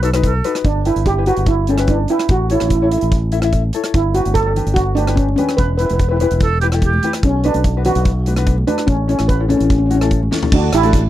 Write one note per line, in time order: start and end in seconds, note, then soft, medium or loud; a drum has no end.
0.00 0.40 B1 medium
0.00 0.09 D#4 medium
0.00 0.10 F#4 medium
0.00 0.10 A4 medium
0.00 0.10 B4 medium
0.00 closed hi-hat medium
0.14 0.33 D#4 medium
0.14 0.33 F#4 medium
0.14 0.33 B4 medium
0.14 cross-stick medium
0.14 closed hi-hat medium
0.24 0.53 A4 medium
0.24 kick medium
0.24 closed hi-hat medium
0.44 0.65 D#4 medium
0.44 0.66 F#4 medium
0.44 0.66 B4 medium
0.44 closed hi-hat medium
0.55 cross-stick medium
0.55 closed hi-hat soft
0.64 0.90 G1 medium
0.64 0.75 D4 medium
0.64 kick medium
0.64 closed hi-hat soft
0.85 1.04 E4 medium
0.85 1.08 E4 medium
0.85 1.04 G4 medium
0.85 1.05 B4 medium
0.85 closed hi-hat medium
0.96 1.30 G1 medium
0.96 closed hi-hat medium
1.06 1.28 G4 medium
1.06 kick medium
1.06 closed hi-hat soft
1.18 1.24 E4 medium
1.18 1.24 G4 medium
1.18 1.24 B4 medium
1.26 1.52 E4 medium
1.26 1.46 F#4 medium
1.26 1.52 G4 medium
1.26 1.52 B4 medium
1.26 closed hi-hat medium
1.37 2.05 G1 medium
1.37 closed hi-hat medium
1.46 1.69 E4 medium
1.46 kick medium
1.46 closed hi-hat soft
1.67 1.88 C#4 medium
1.67 1.75 E4 medium
1.67 1.75 G4 medium
1.67 1.75 A4 medium
1.67 closed hi-hat medium
1.78 1.98 E4 medium
1.78 1.98 G4 medium
1.78 1.98 B4 medium
1.78 cross-stick medium
1.78 closed hi-hat medium
1.87 1.99 D4 medium
1.87 kick medium
1.87 closed hi-hat soft
2.08 2.29 E4 medium
2.08 2.30 E4 medium
2.08 2.31 G4 medium
2.08 2.31 B4 medium
2.08 closed hi-hat medium
2.19 cross-stick medium
2.19 closed hi-hat medium
2.29 2.55 A1 medium
2.29 2.50 F#4 medium
2.29 kick medium
2.29 closed hi-hat soft
2.50 2.69 E4 medium
2.50 2.59 E4 medium
2.50 2.69 A4 soft
2.50 2.69 C#5 medium
2.50 closed hi-hat medium
2.60 2.95 A1 medium
2.60 2.67 E4 medium
2.60 cross-stick medium
2.60 closed hi-hat medium
2.68 2.74 E4 medium
2.68 kick medium
2.68 closed hi-hat medium
2.75 2.81 E4 medium
2.81 2.88 E4 medium
2.81 2.89 E4 medium
2.81 2.88 A4 medium
2.81 2.88 C#5 medium
2.91 2.96 E4 soft
2.91 3.16 E4 medium
2.91 3.16 A4 medium
2.91 3.17 E5 medium
2.91 closed hi-hat medium
2.98 3.04 E4 medium
2.98 closed hi-hat medium
3.02 3.70 A1 medium
3.12 kick medium
3.12 closed hi-hat medium
3.32 3.39 E4 medium
3.32 3.39 A4 medium
3.32 3.39 E5 medium
3.32 closed hi-hat medium
3.42 3.62 E4 medium
3.42 3.62 A4 medium
3.42 3.62 E5 medium
3.42 cross-stick medium
3.42 closed hi-hat medium
3.53 kick medium
3.53 closed hi-hat medium
3.73 3.95 E4 medium
3.73 3.95 A4 medium
3.73 3.95 C#5 medium
3.73 closed hi-hat medium
3.84 cross-stick medium
3.84 closed hi-hat medium
3.94 4.20 G1 medium
3.94 4.16 E4 medium
3.94 kick medium
3.94 closed hi-hat medium
4.14 4.34 D4 soft
4.14 4.24 F#4 medium
4.14 4.34 G4 medium
4.14 4.34 B4 medium
4.14 closed hi-hat medium
4.25 4.59 G1 medium
4.25 closed hi-hat medium
4.25 high conga medium
4.34 4.73 A4 medium
4.34 kick medium
4.34 closed hi-hat medium
4.46 4.53 D4 medium
4.46 4.52 G4 medium
4.46 4.52 A4 medium
4.56 4.81 D4 medium
4.56 4.81 G4 medium
4.56 4.81 B4 medium
4.56 closed hi-hat medium
4.56 low conga medium
4.67 5.34 G1 medium
4.67 closed hi-hat medium
4.74 4.97 F#4 medium
4.74 kick medium
4.74 closed hi-hat soft
4.95 5.17 D4 medium
4.95 5.04 D4 medium
4.95 5.04 G4 medium
4.95 5.04 B4 medium
4.95 closed hi-hat medium
4.95 high conga medium
5.07 5.27 D4 medium
5.07 5.26 G4 medium
5.07 5.27 B4 medium
5.07 cross-stick medium
5.07 closed hi-hat medium
5.16 5.35 C#4 medium
5.16 kick medium
5.16 closed hi-hat medium
5.29 high conga medium
5.36 5.56 C#4 medium
5.36 5.59 D4 medium
5.36 5.59 G4 medium
5.36 5.59 B4 medium
5.36 closed hi-hat medium
5.36 high conga medium
5.36 low conga medium
5.49 cross-stick medium
5.49 closed hi-hat soft
5.57 5.84 E1 medium
5.57 5.67 B4 medium
5.57 kick loud
5.57 closed hi-hat soft
5.78 5.98 E4 medium
5.78 5.99 G4 medium
5.78 5.84 B4 medium
5.78 5.99 B4 medium
5.78 closed hi-hat medium
5.86 5.92 B4 soft
5.86 closed hi-hat medium
5.91 6.24 E1 medium
5.91 6.00 B4 medium
5.91 high conga medium
5.99 6.08 B4 medium
5.99 kick medium
5.99 closed hi-hat medium
6.09 6.17 E4 medium
6.09 6.17 G4 medium
6.09 6.15 B4 medium
6.09 6.17 B4 medium
6.16 6.23 B4 soft
6.16 closed hi-hat medium
6.21 6.46 E4 medium
6.21 6.46 G4 medium
6.21 6.46 B4 medium
6.21 6.32 B4 medium
6.21 low conga medium
6.31 6.99 E1 medium
6.31 closed hi-hat medium
6.40 6.60 A4 medium
6.40 kick loud
6.40 closed hi-hat medium
6.61 6.69 E4 medium
6.61 6.67 G4 medium
6.61 6.69 G4 medium
6.61 6.69 B4 medium
6.61 closed hi-hat medium
6.61 high conga medium
6.72 6.91 E4 medium
6.72 6.92 G4 medium
6.72 6.92 A4 medium
6.72 cross-stick medium
6.72 closed hi-hat medium
6.82 7.12 G4 medium
6.82 kick medium
6.82 closed hi-hat medium
6.93 high conga medium
7.03 7.24 E4 medium
7.03 7.24 G4 medium
7.03 7.24 B4 medium
7.03 closed hi-hat medium
7.03 high conga medium
7.03 low conga medium
7.13 cross-stick medium
7.13 closed hi-hat medium
7.23 7.49 B1 medium
7.23 7.45 C#4 medium
7.23 kick loud
7.23 closed hi-hat medium
7.44 7.63 D4 medium
7.44 7.87 D4 medium
7.44 7.63 F#4 medium
7.44 7.63 B4 medium
7.44 closed hi-hat medium
7.54 7.88 B1 medium
7.54 closed hi-hat medium
7.54 high conga medium
7.64 kick medium
7.64 closed hi-hat medium
7.77 7.82 D4 medium
7.77 7.82 F#4 medium
7.77 7.82 B4 medium
7.85 8.11 D4 medium
7.85 8.64 F#4 medium
7.85 8.11 F#4 medium
7.85 8.10 B4 medium
7.85 closed hi-hat medium
7.85 low conga medium
7.95 8.63 B1 medium
7.95 closed hi-hat medium
8.05 kick loud
8.05 closed hi-hat medium
8.26 8.33 D4 medium
8.26 8.33 F#4 soft
8.26 8.33 B4 medium
8.26 closed hi-hat medium
8.26 high conga medium
8.36 8.56 D4 medium
8.36 8.56 F#4 medium
8.36 8.56 B4 medium
8.36 cross-stick medium
8.36 closed hi-hat medium
8.47 kick medium
8.47 closed hi-hat medium
8.58 high conga medium
8.67 8.89 D4 medium
8.67 8.88 D4 medium
8.67 8.88 F#4 medium
8.67 8.88 B4 medium
8.67 closed hi-hat medium
8.67 high conga medium
8.67 low conga medium
8.78 cross-stick medium
8.78 closed hi-hat medium
8.87 9.14 A1 loud
8.87 9.08 C#4 medium
8.87 kick medium
8.87 closed hi-hat soft
9.08 9.27 C#4 medium
9.08 9.28 C#4 medium
9.08 9.27 E4 medium
9.08 9.27 A4 medium
9.08 closed hi-hat medium
9.19 9.53 A1 medium
9.19 cross-stick medium
9.19 closed hi-hat medium
9.19 high conga medium
9.28 9.50 B4 medium
9.28 kick medium
9.28 closed hi-hat medium
9.40 9.46 C#4 medium
9.40 9.46 E4 medium
9.40 9.46 A4 medium
9.48 9.74 C#4 medium
9.48 9.56 C#4 medium
9.48 9.74 E4 medium
9.48 9.74 A4 medium
9.48 closed hi-hat medium
9.48 high conga medium
9.48 low conga medium
9.57 10.28 A1 medium
9.57 9.64 C#4 medium
9.57 closed hi-hat medium
9.65 9.69 C#4 medium
9.70 9.77 C#4 medium
9.70 kick medium
9.70 closed hi-hat medium
9.78 9.85 C#4 medium
9.86 9.94 C#4 medium
9.90 9.97 C#4 medium
9.90 9.97 E4 medium
9.90 9.97 F#4 medium
9.90 closed hi-hat medium
9.90 high conga medium
9.95 10.02 C#4 medium
10.01 10.20 C#4 medium
10.01 10.20 E4 medium
10.01 10.20 A4 medium
10.01 cross-stick medium
10.01 closed hi-hat medium
10.11 kick medium
10.11 closed hi-hat medium
10.23 high conga medium
10.31 10.52 C#4 medium
10.31 10.52 E4 medium
10.31 10.53 A4 medium
10.31 snare medium
10.31 low conga medium
10.43 floor tom medium
10.52 10.69 D2 medium
10.52 10.75 D4 medium
10.52 10.72 F#4 medium
10.52 kick loud
10.52 crash loud
10.62 10.75 D4 medium
10.62 10.75 F#4 medium
10.62 10.75 A4 medium
10.73 11.07 A1 medium
10.73 11.10 E4 medium
10.73 11.10 G4 medium
10.73 cross-stick medium
10.73 closed hi-hat medium
10.83 11.02 D4 medium
10.83 11.02 F#4 medium
10.83 11.02 A4 medium
10.83 closed hi-hat medium
10.83 high conga medium
10.93 kick medium
10.93 closed hi-hat medium